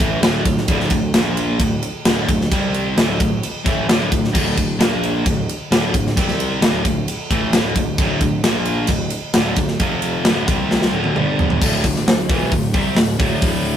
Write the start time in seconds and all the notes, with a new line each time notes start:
0.00 A1 A2 E3 A3, kick, ride
0.22 D1 D2 A2 D3, snare, ride
0.45 D1 D2 A2, kick, ride
0.57 snare
0.68 D1 D2 A2 D3, kick, ride
0.80 snare
0.90 D1 D2 A2, kick, ride
1.14 A#1 A#2 F3 A#3, snare, ride
1.37 ride
1.59 D1 D2 A2, kick, ride
1.83 ride
2.05 D1 D2 A2 D3, snare, ride
2.28 D1 D2 A2, kick, ride
2.41 snare
2.51 C2 C3 G3 C4, kick, ride
2.74 ride
2.97 D1 D2 A2 D3, snare, ride
3.19 D1 D2 A2, kick, ride
3.43 ride
3.64 A1 A2 E3 A3, kick, ride
3.88 D1 D2 A2 D3, snare, ride
4.11 D1 D2 A2, kick, ride
4.24 snare
4.33 D1 D2 A2 D3, kick, crash
4.57 D1 D2 A2, kick, ride
4.79 A#1 A#2 F3 A#3, snare, ride
5.03 ride
5.25 D1 D2 A2, kick, ride
5.49 ride
5.71 D1 D2 A2 D3, snare, ride
5.94 D1 D2 A2, kick, ride
6.07 snare
6.17 C2 C3 G3 C4, kick, ride
6.28 snare
6.40 ride
6.61 D1 D2 A2 D3, snare, ride
6.85 D1 D2 A2, kick, ride
7.08 ride
7.31 A1 A2 E3 A3, kick, ride
7.53 D1 D2 A2 D3, snare, ride
7.76 D1 D2 A2, kick, ride
7.98 D1 D2 A2 D3, kick, ride
8.21 D1 D2 A2, kick, ride
8.43 A#1 A#2 F3 A#3, snare, ride
8.65 ride
8.87 D1 D2 A2, kick, ride
9.10 ride
9.34 D1 D2 A2 D3, snare, ride
9.56 D1 D2 A2, kick, ride
9.68 snare
9.79 F1 F2 C3 F3, kick, ride
10.02 ride
10.25 D1 D2 A2 D3, snare, ride
10.48 C2 C3 G3 C4, kick, ride
10.71 snare
10.82 snare
10.92 D1 D2 A2 D3
11.04 high tom
11.15 G1 G2 D3 G3, mid tom
11.39 floor tom
11.50 floor tom
11.61 D1 D2 A2 D3, kick, crash
11.84 D1 D2 A2, kick, open hi-hat
11.96 snare
12.06 D1 D2 A2, snare, open hi-hat
12.29 E1 E2 B2 E3, kick, open hi-hat
12.52 D1 D2 A2, kick, open hi-hat
12.73 C2 C3 G3 C4, kick, open hi-hat
12.95 D1 D2 A2, snare, open hi-hat
13.19 D1 D2 A2 D3, kick, open hi-hat
13.42 kick, open hi-hat
13.65 open hi-hat